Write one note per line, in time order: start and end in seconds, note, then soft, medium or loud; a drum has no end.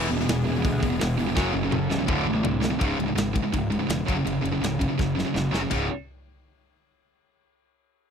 0.00 1.35 E3 medium
0.00 1.35 G#3 medium
0.00 1.35 B3 medium
0.00 1.35 G#4 loud
0.10 0.27 E1 medium
0.10 0.19 E2 medium
0.10 0.19 B2 medium
0.10 open hi-hat medium
0.20 0.29 E2 medium
0.20 0.29 B2 loud
0.20 snare soft
0.25 0.45 E1 loud
0.25 0.43 E2 medium
0.25 0.43 B2 medium
0.25 snare loud
0.25 open hi-hat loud
0.30 0.45 E2 medium
0.30 0.46 B2 medium
0.44 0.63 E1 medium
0.44 0.51 E2 medium
0.44 0.50 B2 loud
0.44 open hi-hat medium
0.48 0.55 E2 medium
0.48 0.55 B2 medium
0.56 0.64 E2 medium
0.56 0.64 B2 loud
0.65 0.81 D2 loud
0.65 0.81 E2 medium
0.65 0.81 B2 loud
0.65 kick loud
0.65 open hi-hat medium
0.82 0.99 E1 medium
0.82 0.91 E2 medium
0.82 0.91 B2 medium
0.82 kick medium
0.82 open hi-hat medium
0.92 1.00 E2 medium
0.92 1.01 B2 medium
1.00 1.17 E1 loud
1.00 1.17 E2 medium
1.00 1.17 B2 loud
1.00 snare loud
1.00 open hi-hat medium
1.19 1.35 E1 loud
1.19 1.28 E2 medium
1.19 1.27 B2 medium
1.19 open hi-hat medium
1.28 1.35 E2 medium
1.28 1.36 B2 medium
1.35 1.53 F#1 loud
1.35 1.53 F#2 loud
1.35 1.53 C#3 medium
1.35 2.80 F#3 medium
1.35 1.54 F#3 loud
1.35 2.80 A3 medium
1.35 2.08 C#4 medium
1.35 2.80 A4 medium
1.35 kick loud
1.35 snare medium
1.54 1.71 F#1 medium
1.54 1.63 F#2 medium
1.54 1.63 C#3 loud
1.64 1.69 F#2 medium
1.64 1.70 C#3 loud
1.70 1.89 F#1 loud
1.70 1.88 F#2 medium
1.70 1.88 C#3 loud
1.70 mid tom medium
1.90 2.07 C#1 loud
1.90 1.98 F#2 medium
1.90 1.98 C#3 medium
1.90 snare medium
1.99 2.06 F#2 medium
1.99 2.07 C#3 medium
2.06 2.25 D1 loud
2.06 2.24 D2 loud
2.06 2.24 A2 loud
2.06 2.25 D3 loud
2.06 2.80 D4 medium
2.06 kick loud
2.06 mid tom medium
2.25 2.43 A1 medium
2.25 2.34 D2 medium
2.25 2.33 A2 medium
2.35 2.42 D2 medium
2.35 2.43 A2 medium
2.43 2.78 C2 loud
2.43 2.60 D2 medium
2.43 2.60 A2 medium
2.43 floor tom loud
2.61 2.69 D2 medium
2.61 2.69 A2 medium
2.61 snare loud
2.70 2.79 D2 medium
2.70 2.80 A2 medium
2.79 2.92 C#1 loud
2.79 2.97 C#2 medium
2.79 2.98 G#2 medium
2.79 2.98 C#3 medium
2.79 kick loud
2.79 ride medium
2.99 3.11 C#1 medium
2.99 3.07 C#2 medium
2.99 3.07 G#2 medium
2.99 ride medium
3.08 3.14 C#2 medium
3.08 3.15 G#2 medium
3.16 3.40 G#1 loud
3.16 3.33 C#2 medium
3.16 3.33 G#2 medium
3.16 snare loud
3.16 ride medium
3.34 3.41 C#2 medium
3.34 3.41 G#2 medium
3.34 kick medium
3.34 ride medium
3.42 3.51 C#2 medium
3.42 3.52 G#2 medium
3.52 3.77 C#1 medium
3.52 3.69 C#2 medium
3.52 3.69 G#2 medium
3.52 kick medium
3.52 ride medium
3.70 3.79 C#2 medium
3.70 3.78 G#2 medium
3.70 ride medium
3.79 3.87 C#2 medium
3.79 3.88 G#2 medium
3.88 4.01 E1 loud
3.88 4.05 C#2 medium
3.88 4.06 G#2 medium
3.88 snare loud
3.88 ride medium
4.07 4.20 F#1 medium
4.07 4.15 F#2 medium
4.07 4.15 C#3 medium
4.07 4.16 F#3 medium
4.07 kick loud
4.07 ride medium
4.16 4.23 F#2 medium
4.16 4.23 C#3 medium
4.24 4.37 F#1 medium
4.24 4.40 F#2 medium
4.24 4.40 C#3 medium
4.24 ride medium
4.41 4.56 F#1 medium
4.41 4.51 F#2 medium
4.41 4.50 C#3 medium
4.45 ride medium
4.52 4.59 F#2 medium
4.52 4.59 C#3 medium
4.60 4.85 C#1 loud
4.60 4.78 F#2 medium
4.60 4.78 C#3 medium
4.60 ride medium
4.65 snare loud
4.79 4.89 F#2 medium
4.79 4.88 C#3 medium
4.79 kick medium
4.79 ride medium
4.89 4.97 F#2 medium
4.89 4.98 C#3 medium
4.98 5.22 F#1 medium
4.98 5.15 F#2 medium
4.98 5.15 C#3 medium
4.98 kick loud
4.98 snare medium
5.16 5.25 F#2 medium
5.16 5.25 C#3 medium
5.16 snare medium
5.26 5.33 F#2 medium
5.26 5.33 C#3 medium
5.34 5.47 F#1 medium
5.34 5.50 F#2 medium
5.34 5.51 C#3 medium
5.34 snare medium
5.51 5.65 F#1 medium
5.51 5.59 F#2 medium
5.51 5.60 C#3 medium
5.51 5.61 F#3 medium
5.51 snare medium
5.60 5.69 F#2 medium
5.60 5.70 C#3 medium
5.70 5.89 C#1 medium
5.70 5.85 C#2 medium
5.70 5.86 G#2 medium
5.70 5.86 C#3 medium
5.70 kick medium
5.70 floor tom medium
5.70 crash medium